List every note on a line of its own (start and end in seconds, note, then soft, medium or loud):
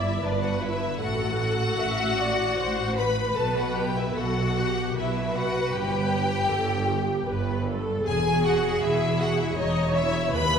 0.00 0.13 G1 medium
0.00 0.13 G2 medium
0.00 0.22 E4 medium
0.00 0.18 D5 medium
0.00 0.22 E5 loud
0.22 0.93 G1 medium
0.22 0.92 G2 medium
0.22 0.44 D4 medium
0.22 1.01 B4 medium
0.22 0.44 D5 medium
0.43 0.63 F#4 medium
0.43 0.64 F#5 medium
0.62 1.01 E4 medium
0.62 1.02 E5 medium
1.00 1.71 A1 medium
1.00 1.71 A2 medium
1.00 2.93 F#4 loud
1.00 1.78 A4 medium
1.00 2.93 F#5 loud
1.80 2.49 A1 medium
1.80 2.49 A2 medium
1.80 2.19 E5 medium
2.20 2.59 D5 medium
2.58 3.28 A1 medium
2.58 3.27 A2 medium
2.58 2.98 C5 medium
2.97 3.36 B4 medium
2.97 4.15 B4 medium
2.97 3.37 B5 loud
3.35 4.06 B1 medium
3.35 4.06 B2 medium
3.35 3.55 A4 medium
3.35 3.57 A5 medium
3.56 3.76 F#4 medium
3.56 3.77 F#5 medium
3.76 3.95 G4 medium
3.76 3.97 G5 medium
3.96 4.16 E4 medium
3.96 4.17 E5 medium
4.15 4.86 B1 medium
4.15 4.86 B2 medium
4.15 4.96 F#4 medium
4.15 4.56 A4 medium
4.15 4.97 F#5 loud
4.57 4.96 G4 medium
4.95 5.65 B1 medium
4.95 5.65 B2 medium
4.95 5.34 E4 medium
4.95 6.52 B4 medium
4.95 5.36 E5 medium
5.34 5.74 F#4 medium
5.34 5.75 F#5 loud
5.74 6.42 G1 medium
5.74 6.42 G2 medium
5.74 7.66 G4 loud
5.74 7.67 G5 loud
6.50 7.18 G1 medium
6.50 7.18 G2 medium
6.50 6.89 A4 medium
6.89 7.27 G4 medium
7.27 7.95 G1 medium
7.27 7.96 G2 medium
7.27 7.66 B4 medium
7.67 8.05 A4 medium
8.04 8.72 E1 medium
8.04 8.73 E2 medium
8.04 8.40 G#4 medium
8.04 9.57 G#4 loud
8.04 8.42 G#5 loud
8.44 8.82 F#4 medium
8.44 8.83 F#5 loud
8.81 9.48 E1 medium
8.81 9.48 E2 medium
8.81 9.20 E4 medium
8.81 9.19 E5 loud
9.19 9.38 F#4 medium
9.19 9.38 F#5 loud
9.38 9.57 E4 medium
9.38 9.57 E5 medium
9.55 10.25 E1 medium
9.55 10.25 E2 medium
9.55 9.95 D#4 medium
9.55 10.33 C#5 medium
9.55 9.95 D#5 loud
9.93 10.35 E4 medium
9.93 10.32 E5 loud
10.33 10.59 D#2 medium
10.33 10.59 B4 medium
10.33 10.59 B4 loud
10.33 10.59 B5 loud